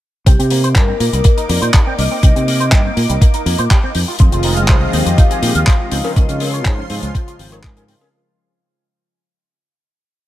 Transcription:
0.26 C2 A#3 C4 D#4 G4 D6, kick, closed hi-hat
0.39 C3 C4, closed hi-hat
0.50 A#3 C5, open hi-hat
0.64 C5, closed hi-hat
0.75 G2 G4 A#4, kick, clap, closed hi-hat
0.88 C4
1.00 A#2 A#3 A#4, open hi-hat
1.13 C2 G3, closed hi-hat
1.24 A#3, kick, closed hi-hat
1.37 D#4, closed hi-hat
1.49 F2 A#3 D5, open hi-hat
1.62 A#2 C5, closed hi-hat
1.73 G4, kick, clap, closed hi-hat
1.87 C4
1.98 C2 A#3 D#5, open hi-hat
2.11 C4
2.23 C2 C4 D#5, kick, closed hi-hat
2.36 C3 C4, closed hi-hat
2.48 A#3, open hi-hat
2.60 C5, closed hi-hat
2.72 G2 G4, kick, clap, closed hi-hat
2.85 C4
2.96 A#2 A#3, open hi-hat
3.09 C2 G3, closed hi-hat
3.21 A#3, kick, closed hi-hat
3.34 D#4, closed hi-hat
3.46 F2 A#3, open hi-hat
3.58 A#2 C5, closed hi-hat
3.70 G4, kick, clap, closed hi-hat
3.83 C4
3.95 F2 G#3 D#4 F4 D#5, open hi-hat
4.08 F4
4.19 F2 D#3 F3 G#3 C4 F4, kick, closed hi-hat
4.32 F1 F4, closed hi-hat
4.43 D#4, open hi-hat
4.57 F5, closed hi-hat
4.68 C2 C5, kick, clap, closed hi-hat
4.81 F4
4.93 D#2 D#3 F3 G#3 C4 D#4 G4, open hi-hat
5.06 F2 C4 D#5, closed hi-hat
5.18 D#4 F5, kick, closed hi-hat
5.31 G#4, closed hi-hat
5.42 A#2 D#3 F3 G#3 C4 D#4 G4, open hi-hat
5.55 D#2 F5, closed hi-hat
5.67 C5, kick, clap, closed hi-hat
5.79 C#3 F3 G#3 C4 D#4 F4
5.91 C#2 C4 C6, open hi-hat
6.04 C#4, cowbell
6.15 C#2 C#3 F3 G#3 C#4 F4 D#5, kick, closed hi-hat
6.29 C#3 C#4, closed hi-hat
6.40 C4 C#5, open hi-hat, cowbell
6.54 C#5, closed hi-hat
6.65 G#2 G#4 C5, kick, clap, closed hi-hat
6.78 C#4
6.89 G#2 C#3 F3 G#3 C4 F4, open hi-hat
7.03 C#2 G#3, closed hi-hat
7.15 C4, kick, closed hi-hat
7.28 F4, closed hi-hat
7.39 G#1 C#3 F3 G#3 C4 D#4, open hi-hat
7.52 C#5, closed hi-hat, cowbell
7.63 G#2 C#3 F3 G#3 F4 G#4, kick, clap, closed hi-hat
7.77 C#4, closed hi-hat, cowbell
7.88 C4, open hi-hat
8.01 C#4, cowbell

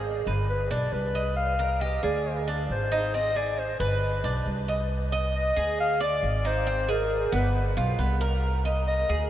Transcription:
Already playing: G#1 G#4
0.26 G1 B4
0.50 B4
0.71 B1 D4 D5
0.92 C2 B4
1.15 D#5
1.36 F5
1.59 A#4
1.81 G4 D#5
2.03 D2 G#4 D5
2.48 D4
2.69 G#1 C5
2.92 D#4
3.14 C4 D#5
3.36 G#4 D5
3.59 C5
3.80 G1 B4
4.24 B1 D4
4.46 C2
4.68 D#5
5.12 D#5
5.36 D#5
5.56 D2 G#4
5.80 F5
6.00 D5
6.23 G#1
6.45 D#4 C5
6.67 C4
6.88 G#4 A#4
7.32 G1 B3 B4
7.77 B1 F4
7.99 C2 B3
8.21 A#4
8.65 D#5
8.88 D#5
9.09 D2 G#4

